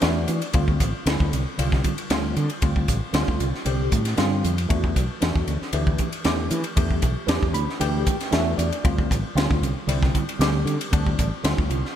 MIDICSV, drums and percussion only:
0, 0, Header, 1, 2, 480
1, 0, Start_track
1, 0, Tempo, 519031
1, 505, Time_signature, 4, 2, 24, 8
1, 11059, End_track
2, 0, Start_track
2, 0, Title_t, "Drums"
2, 15, Note_on_c, 9, 51, 75
2, 22, Note_on_c, 9, 38, 90
2, 107, Note_off_c, 9, 51, 0
2, 114, Note_off_c, 9, 38, 0
2, 256, Note_on_c, 9, 44, 79
2, 256, Note_on_c, 9, 51, 57
2, 348, Note_off_c, 9, 44, 0
2, 348, Note_off_c, 9, 51, 0
2, 385, Note_on_c, 9, 51, 58
2, 477, Note_off_c, 9, 51, 0
2, 494, Note_on_c, 9, 51, 71
2, 502, Note_on_c, 9, 36, 91
2, 586, Note_off_c, 9, 51, 0
2, 594, Note_off_c, 9, 36, 0
2, 627, Note_on_c, 9, 36, 71
2, 720, Note_off_c, 9, 36, 0
2, 742, Note_on_c, 9, 44, 86
2, 742, Note_on_c, 9, 51, 63
2, 743, Note_on_c, 9, 36, 77
2, 834, Note_off_c, 9, 44, 0
2, 834, Note_off_c, 9, 51, 0
2, 835, Note_off_c, 9, 36, 0
2, 985, Note_on_c, 9, 51, 89
2, 992, Note_on_c, 9, 38, 105
2, 1077, Note_off_c, 9, 51, 0
2, 1085, Note_off_c, 9, 38, 0
2, 1112, Note_on_c, 9, 36, 85
2, 1205, Note_off_c, 9, 36, 0
2, 1230, Note_on_c, 9, 44, 71
2, 1230, Note_on_c, 9, 51, 64
2, 1323, Note_off_c, 9, 44, 0
2, 1323, Note_off_c, 9, 51, 0
2, 1469, Note_on_c, 9, 51, 85
2, 1561, Note_off_c, 9, 51, 0
2, 1593, Note_on_c, 9, 36, 84
2, 1597, Note_on_c, 9, 38, 34
2, 1686, Note_off_c, 9, 36, 0
2, 1690, Note_off_c, 9, 38, 0
2, 1704, Note_on_c, 9, 44, 82
2, 1704, Note_on_c, 9, 51, 61
2, 1706, Note_on_c, 9, 36, 67
2, 1796, Note_off_c, 9, 44, 0
2, 1796, Note_off_c, 9, 51, 0
2, 1799, Note_off_c, 9, 36, 0
2, 1829, Note_on_c, 9, 51, 59
2, 1922, Note_off_c, 9, 51, 0
2, 1943, Note_on_c, 9, 51, 76
2, 1950, Note_on_c, 9, 38, 101
2, 2036, Note_off_c, 9, 51, 0
2, 2043, Note_off_c, 9, 38, 0
2, 2187, Note_on_c, 9, 44, 79
2, 2187, Note_on_c, 9, 51, 57
2, 2280, Note_off_c, 9, 44, 0
2, 2280, Note_off_c, 9, 51, 0
2, 2308, Note_on_c, 9, 51, 60
2, 2400, Note_off_c, 9, 51, 0
2, 2422, Note_on_c, 9, 51, 82
2, 2426, Note_on_c, 9, 36, 106
2, 2514, Note_off_c, 9, 51, 0
2, 2519, Note_off_c, 9, 36, 0
2, 2552, Note_on_c, 9, 36, 80
2, 2644, Note_off_c, 9, 36, 0
2, 2664, Note_on_c, 9, 44, 83
2, 2664, Note_on_c, 9, 51, 62
2, 2667, Note_on_c, 9, 36, 74
2, 2757, Note_off_c, 9, 44, 0
2, 2757, Note_off_c, 9, 51, 0
2, 2760, Note_off_c, 9, 36, 0
2, 2902, Note_on_c, 9, 51, 80
2, 2909, Note_on_c, 9, 38, 105
2, 2994, Note_off_c, 9, 51, 0
2, 3001, Note_off_c, 9, 38, 0
2, 3035, Note_on_c, 9, 36, 76
2, 3127, Note_off_c, 9, 36, 0
2, 3146, Note_on_c, 9, 44, 77
2, 3146, Note_on_c, 9, 51, 59
2, 3238, Note_off_c, 9, 44, 0
2, 3238, Note_off_c, 9, 51, 0
2, 3278, Note_on_c, 9, 38, 26
2, 3371, Note_off_c, 9, 38, 0
2, 3381, Note_on_c, 9, 51, 72
2, 3474, Note_off_c, 9, 51, 0
2, 3623, Note_on_c, 9, 44, 78
2, 3623, Note_on_c, 9, 51, 51
2, 3627, Note_on_c, 9, 36, 75
2, 3716, Note_off_c, 9, 44, 0
2, 3716, Note_off_c, 9, 51, 0
2, 3720, Note_off_c, 9, 36, 0
2, 3747, Note_on_c, 9, 51, 62
2, 3754, Note_on_c, 9, 38, 29
2, 3839, Note_off_c, 9, 51, 0
2, 3847, Note_off_c, 9, 38, 0
2, 3860, Note_on_c, 9, 51, 68
2, 3867, Note_on_c, 9, 38, 88
2, 3952, Note_off_c, 9, 51, 0
2, 3960, Note_off_c, 9, 38, 0
2, 4110, Note_on_c, 9, 44, 84
2, 4110, Note_on_c, 9, 51, 51
2, 4202, Note_off_c, 9, 44, 0
2, 4202, Note_off_c, 9, 51, 0
2, 4236, Note_on_c, 9, 51, 55
2, 4328, Note_off_c, 9, 51, 0
2, 4348, Note_on_c, 9, 51, 75
2, 4349, Note_on_c, 9, 36, 108
2, 4440, Note_off_c, 9, 51, 0
2, 4442, Note_off_c, 9, 36, 0
2, 4474, Note_on_c, 9, 36, 72
2, 4566, Note_off_c, 9, 36, 0
2, 4589, Note_on_c, 9, 36, 77
2, 4589, Note_on_c, 9, 44, 75
2, 4589, Note_on_c, 9, 51, 58
2, 4681, Note_off_c, 9, 36, 0
2, 4682, Note_off_c, 9, 44, 0
2, 4682, Note_off_c, 9, 51, 0
2, 4825, Note_on_c, 9, 51, 77
2, 4832, Note_on_c, 9, 38, 106
2, 4918, Note_off_c, 9, 51, 0
2, 4925, Note_off_c, 9, 38, 0
2, 4952, Note_on_c, 9, 36, 85
2, 5045, Note_off_c, 9, 36, 0
2, 5064, Note_on_c, 9, 44, 73
2, 5064, Note_on_c, 9, 51, 53
2, 5156, Note_off_c, 9, 44, 0
2, 5156, Note_off_c, 9, 51, 0
2, 5195, Note_on_c, 9, 38, 28
2, 5287, Note_off_c, 9, 38, 0
2, 5296, Note_on_c, 9, 51, 78
2, 5388, Note_off_c, 9, 51, 0
2, 5428, Note_on_c, 9, 36, 73
2, 5520, Note_off_c, 9, 36, 0
2, 5533, Note_on_c, 9, 44, 73
2, 5533, Note_on_c, 9, 51, 59
2, 5542, Note_on_c, 9, 36, 62
2, 5626, Note_off_c, 9, 44, 0
2, 5626, Note_off_c, 9, 51, 0
2, 5635, Note_off_c, 9, 36, 0
2, 5664, Note_on_c, 9, 51, 63
2, 5756, Note_off_c, 9, 51, 0
2, 5775, Note_on_c, 9, 51, 69
2, 5782, Note_on_c, 9, 38, 94
2, 5867, Note_off_c, 9, 51, 0
2, 5875, Note_off_c, 9, 38, 0
2, 6017, Note_on_c, 9, 44, 88
2, 6017, Note_on_c, 9, 51, 63
2, 6109, Note_off_c, 9, 44, 0
2, 6109, Note_off_c, 9, 51, 0
2, 6138, Note_on_c, 9, 51, 57
2, 6230, Note_off_c, 9, 51, 0
2, 6258, Note_on_c, 9, 51, 80
2, 6261, Note_on_c, 9, 36, 94
2, 6351, Note_off_c, 9, 51, 0
2, 6353, Note_off_c, 9, 36, 0
2, 6386, Note_on_c, 9, 36, 67
2, 6478, Note_off_c, 9, 36, 0
2, 6493, Note_on_c, 9, 44, 85
2, 6493, Note_on_c, 9, 51, 63
2, 6499, Note_on_c, 9, 36, 72
2, 6585, Note_off_c, 9, 44, 0
2, 6585, Note_off_c, 9, 51, 0
2, 6592, Note_off_c, 9, 36, 0
2, 6736, Note_on_c, 9, 51, 80
2, 6743, Note_on_c, 9, 38, 111
2, 6828, Note_off_c, 9, 51, 0
2, 6836, Note_off_c, 9, 38, 0
2, 6867, Note_on_c, 9, 36, 86
2, 6960, Note_off_c, 9, 36, 0
2, 6975, Note_on_c, 9, 44, 75
2, 6975, Note_on_c, 9, 51, 58
2, 7068, Note_off_c, 9, 44, 0
2, 7068, Note_off_c, 9, 51, 0
2, 7116, Note_on_c, 9, 38, 31
2, 7208, Note_off_c, 9, 38, 0
2, 7221, Note_on_c, 9, 51, 83
2, 7313, Note_off_c, 9, 51, 0
2, 7459, Note_on_c, 9, 44, 86
2, 7459, Note_on_c, 9, 51, 62
2, 7461, Note_on_c, 9, 36, 77
2, 7551, Note_off_c, 9, 44, 0
2, 7551, Note_off_c, 9, 51, 0
2, 7554, Note_off_c, 9, 36, 0
2, 7588, Note_on_c, 9, 51, 58
2, 7595, Note_on_c, 9, 38, 31
2, 7680, Note_off_c, 9, 51, 0
2, 7688, Note_off_c, 9, 38, 0
2, 7698, Note_on_c, 9, 51, 70
2, 7705, Note_on_c, 9, 38, 100
2, 7790, Note_off_c, 9, 51, 0
2, 7798, Note_off_c, 9, 38, 0
2, 7942, Note_on_c, 9, 44, 92
2, 7942, Note_on_c, 9, 51, 62
2, 8035, Note_off_c, 9, 44, 0
2, 8035, Note_off_c, 9, 51, 0
2, 8068, Note_on_c, 9, 51, 53
2, 8161, Note_off_c, 9, 51, 0
2, 8182, Note_on_c, 9, 36, 98
2, 8182, Note_on_c, 9, 51, 70
2, 8274, Note_off_c, 9, 51, 0
2, 8275, Note_off_c, 9, 36, 0
2, 8309, Note_on_c, 9, 36, 76
2, 8402, Note_off_c, 9, 36, 0
2, 8425, Note_on_c, 9, 36, 80
2, 8431, Note_on_c, 9, 44, 75
2, 8431, Note_on_c, 9, 51, 58
2, 8517, Note_off_c, 9, 36, 0
2, 8523, Note_off_c, 9, 44, 0
2, 8523, Note_off_c, 9, 51, 0
2, 8669, Note_on_c, 9, 51, 76
2, 8677, Note_on_c, 9, 38, 113
2, 8762, Note_off_c, 9, 51, 0
2, 8769, Note_off_c, 9, 38, 0
2, 8791, Note_on_c, 9, 36, 94
2, 8884, Note_off_c, 9, 36, 0
2, 8908, Note_on_c, 9, 44, 67
2, 8908, Note_on_c, 9, 51, 54
2, 9001, Note_off_c, 9, 44, 0
2, 9001, Note_off_c, 9, 51, 0
2, 9143, Note_on_c, 9, 51, 85
2, 9236, Note_off_c, 9, 51, 0
2, 9271, Note_on_c, 9, 36, 83
2, 9278, Note_on_c, 9, 38, 30
2, 9364, Note_off_c, 9, 36, 0
2, 9371, Note_off_c, 9, 38, 0
2, 9385, Note_on_c, 9, 44, 77
2, 9385, Note_on_c, 9, 51, 56
2, 9386, Note_on_c, 9, 36, 69
2, 9477, Note_off_c, 9, 44, 0
2, 9477, Note_off_c, 9, 51, 0
2, 9478, Note_off_c, 9, 36, 0
2, 9514, Note_on_c, 9, 51, 55
2, 9606, Note_off_c, 9, 51, 0
2, 9626, Note_on_c, 9, 51, 77
2, 9634, Note_on_c, 9, 38, 94
2, 9719, Note_off_c, 9, 51, 0
2, 9726, Note_off_c, 9, 38, 0
2, 9869, Note_on_c, 9, 44, 82
2, 9869, Note_on_c, 9, 51, 58
2, 9962, Note_off_c, 9, 44, 0
2, 9962, Note_off_c, 9, 51, 0
2, 9995, Note_on_c, 9, 51, 70
2, 10088, Note_off_c, 9, 51, 0
2, 10107, Note_on_c, 9, 36, 112
2, 10107, Note_on_c, 9, 51, 84
2, 10199, Note_off_c, 9, 51, 0
2, 10200, Note_off_c, 9, 36, 0
2, 10233, Note_on_c, 9, 36, 77
2, 10325, Note_off_c, 9, 36, 0
2, 10346, Note_on_c, 9, 44, 89
2, 10346, Note_on_c, 9, 51, 62
2, 10348, Note_on_c, 9, 36, 73
2, 10438, Note_off_c, 9, 44, 0
2, 10438, Note_off_c, 9, 51, 0
2, 10440, Note_off_c, 9, 36, 0
2, 10583, Note_on_c, 9, 51, 88
2, 10591, Note_on_c, 9, 38, 111
2, 10676, Note_off_c, 9, 51, 0
2, 10683, Note_off_c, 9, 38, 0
2, 10713, Note_on_c, 9, 36, 89
2, 10806, Note_off_c, 9, 36, 0
2, 10824, Note_on_c, 9, 44, 82
2, 10824, Note_on_c, 9, 51, 51
2, 10917, Note_off_c, 9, 44, 0
2, 10917, Note_off_c, 9, 51, 0
2, 10961, Note_on_c, 9, 38, 29
2, 11054, Note_off_c, 9, 38, 0
2, 11059, End_track
0, 0, End_of_file